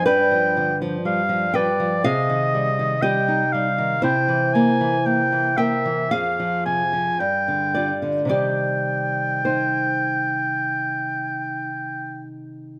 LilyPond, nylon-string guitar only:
\new Staff \with { instrumentName = "Nylon-string guitar" } { \clef bass \time 4/4 \key c \minor \tempo 4 = 56 << { <d' b'>4. <b' g''>8 <aes' f''>4 <g' ees''>4 | <e' c''>4. <bes' g''>8 <aes' f''>4. <f' d''>8 | <g' d''>4 <ees' c''>2 r4 | } \\ { g,16 f16 d16 f16 g16 f16 g16 f16 c16 ees16 g16 ees16 g16 ees'16 g16 ees16 | c16 e16 bes16 e16 bes16 e16 bes16 e16 f,16 f16 c16 f16 g,16 d16 g16 d16 | <c ees g>1 | } >> }